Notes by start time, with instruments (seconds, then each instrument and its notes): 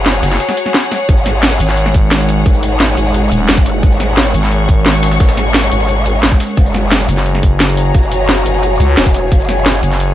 Already playing: wobble bass F#1, ambient pad F#4 C#5 G#5, string section G#4 C#5 F#5 A#5
0.06 snare, closed hi-hat
0.14 shaker
0.23 fm bass F#1, snare, closed hi-hat, shaker
0.32 snare, closed hi-hat
0.40 snare, closed hi-hat
0.49 snare, closed hi-hat, shaker
0.57 closed hi-hat, shaker
0.66 snare
0.74 snare, closed hi-hat
0.83 shaker
0.92 snare, closed hi-hat, shaker
1.00 closed hi-hat
1.09 wobble bass G#1, ambient pad G#3 D#4 A#4, kick, closed hi-hat
1.17 shaker
1.26 snare, closed hi-hat, shaker
1.43 snare, closed hi-hat
1.52 closed hi-hat, shaker
1.60 fm bass G#1, closed hi-hat, shaker
1.69 snare, closed hi-hat
1.77 closed hi-hat
1.86 snare
1.94 kick, closed hi-hat, shaker
2.12 snare, closed hi-hat
2.20 snare
2.29 closed hi-hat, shaker
2.46 wobble bass G#1, kick, closed hi-hat
2.54 shaker
2.63 closed hi-hat, shaker
2.80 snare, closed hi-hat
2.89 shaker
2.97 wobble bass G#1, closed hi-hat, shaker
3.06 snare
3.14 closed hi-hat
3.32 fm bass D#1, closed hi-hat, shaker
3.49 wobble bass F#1, snare, closed hi-hat
3.57 kick, snare
3.66 closed hi-hat, shaker
3.83 wobble bass G#1, ambient pad C#4, string section C#6, kick, closed hi-hat
3.92 shaker
4.00 snare, closed hi-hat, shaker
4.17 snare, closed hi-hat
4.26 closed hi-hat, shaker
4.34 fm bass G#1, closed hi-hat, shaker
4.43 snare, closed hi-hat
4.52 closed hi-hat
4.69 kick, closed hi-hat, shaker
4.86 snare, closed hi-hat
4.94 snare
5.03 snare, closed hi-hat, shaker
5.12 snare, closed hi-hat
5.20 wobble bass G#1, kick, snare, closed hi-hat
5.29 snare, closed hi-hat, shaker
5.37 snare, closed hi-hat, shaker
5.54 snare, closed hi-hat
5.63 shaker
5.72 wobble bass G#1, closed hi-hat, shaker
5.80 snare
5.89 closed hi-hat
6.06 closed hi-hat, shaker
6.23 wobble bass G#1, snare, closed hi-hat
6.32 kick, snare
6.40 snare, closed hi-hat, shaker
6.57 wobble bass F#1, ambient pad F#4 C#5 G#5, string section G#4, kick, closed hi-hat
6.66 string section C#5, shaker
6.74 snare, closed hi-hat, shaker
6.92 snare, closed hi-hat
7.00 string section A#5, closed hi-hat, shaker
7.09 fm bass F#1, closed hi-hat, shaker
7.17 snare, closed hi-hat
7.26 closed hi-hat
7.35 snare
7.43 kick, closed hi-hat, shaker
7.60 snare, closed hi-hat
7.69 snare
7.77 closed hi-hat, shaker
7.94 wobble bass F#1, kick, closed hi-hat
8.03 shaker
8.12 closed hi-hat, shaker
8.29 snare, closed hi-hat
8.37 shaker
8.46 wobble bass F#1, closed hi-hat, shaker
8.54 snare
8.63 closed hi-hat
8.80 fm bass C#2, closed hi-hat, shaker
8.97 wobble bass E1, snare, closed hi-hat
9.06 kick, snare
9.14 closed hi-hat, shaker
9.32 wobble bass F#1, kick, closed hi-hat
9.40 shaker
9.49 snare, closed hi-hat, shaker
9.66 snare, closed hi-hat
9.74 closed hi-hat, shaker
9.81 fm bass F#1, string section G#5, closed hi-hat, shaker
9.92 snare, closed hi-hat
10.00 closed hi-hat